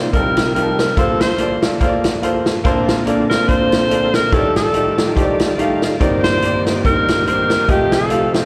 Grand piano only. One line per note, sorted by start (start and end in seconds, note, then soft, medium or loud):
0.13 0.94 F1 medium
0.13 0.94 F2 medium
0.13 0.45 G3 medium
0.13 0.45 D#4 medium
0.13 0.45 F4 medium
0.13 0.20 A4 medium
0.20 0.48 A#4 medium
0.55 0.87 G3 medium
0.55 0.87 D#4 medium
0.55 0.87 F4 medium
0.55 0.62 G4 medium
0.62 0.90 A5 medium
0.97 2.61 G1 medium
0.97 2.61 G2 medium
0.97 1.28 A#3 medium
0.97 1.29 F4 medium
0.97 1.29 A4 medium
0.97 1.29 C5 loud
1.39 1.56 A#3 medium
1.39 1.56 F4 medium
1.39 1.56 A4 medium
1.39 1.56 D5 medium
1.62 1.75 A#3 medium
1.62 1.76 F4 medium
1.62 1.76 A4 medium
1.62 1.76 D5 medium
1.80 2.12 A#3 medium
1.80 2.12 F4 medium
1.80 2.13 A4 medium
1.80 1.87 C5 medium
1.87 2.16 D5 medium
2.22 2.54 A#3 medium
2.22 2.54 F4 medium
2.22 2.54 A4 medium
2.22 2.55 C5 medium
2.64 4.29 A#1 medium
2.64 4.29 A#2 medium
2.64 2.96 A#3 loud
2.64 2.96 D4 medium
2.64 2.96 A4 medium
2.64 2.97 C5 loud
3.05 3.23 A#3 medium
3.05 3.23 D4 medium
3.05 3.24 A4 medium
3.05 3.24 D5 medium
3.29 3.43 A#3 medium
3.29 3.43 D4 medium
3.29 3.44 A4 medium
3.29 3.44 C5 medium
3.48 3.80 A#3 medium
3.48 3.80 D4 medium
3.48 3.80 A4 medium
3.48 3.80 C5 medium
3.90 4.22 A#3 medium
3.90 4.22 D4 medium
3.90 4.22 A4 medium
3.90 4.22 D5 medium
4.32 5.97 A1 medium
4.32 5.97 A2 medium
4.32 4.64 A3 medium
4.32 4.64 D#4 medium
4.32 4.64 G4 medium
4.32 4.39 C#5 medium
4.39 4.67 D5 medium
4.74 4.91 A3 medium
4.74 4.91 D#4 medium
4.74 4.91 G4 medium
4.74 4.92 D5 medium
4.97 5.11 A3 medium
4.97 5.11 D#4 medium
4.97 5.12 G4 soft
4.97 5.12 A4 medium
5.16 5.48 A3 medium
5.16 5.48 D#4 medium
5.16 5.48 G4 medium
5.16 5.23 C5 medium
5.23 5.51 D5 loud
5.58 5.90 A3 medium
5.58 5.90 D#4 medium
5.58 5.90 G4 medium
5.58 5.91 F5 medium
6.00 7.64 G1 medium
6.00 7.64 G2 medium
6.00 6.32 C4 loud
6.00 6.32 D#4 medium
6.00 6.32 A#4 medium
6.00 6.32 D5 loud
6.42 6.59 C4 medium
6.42 6.59 D#4 medium
6.42 6.60 A#4 medium
6.42 6.60 D5 medium
6.65 6.79 C4 medium
6.65 6.79 D#4 medium
6.65 6.79 A#4 medium
6.65 6.80 D#5 medium
6.84 7.16 C4 medium
6.84 6.90 D4 soft
6.84 7.16 A#4 medium
6.84 7.17 C5 medium
6.90 7.19 D#4 medium
7.26 7.58 C4 medium
7.26 7.58 D#4 medium
7.26 7.58 A#4 medium
7.26 7.59 C5 medium
7.68 8.45 F1 medium
7.68 8.45 F2 medium
7.68 7.74 G#3 medium
7.68 8.00 F4 medium
7.68 8.00 G4 medium
7.68 8.00 D#5 medium
7.73 8.02 A3 medium
8.10 8.27 A3 medium
8.10 8.27 F4 medium
8.10 8.27 G4 medium
8.10 8.28 F5 medium
8.34 8.45 A3 medium
8.34 8.45 F4 medium
8.34 8.45 G4 medium
8.34 8.45 D#5 medium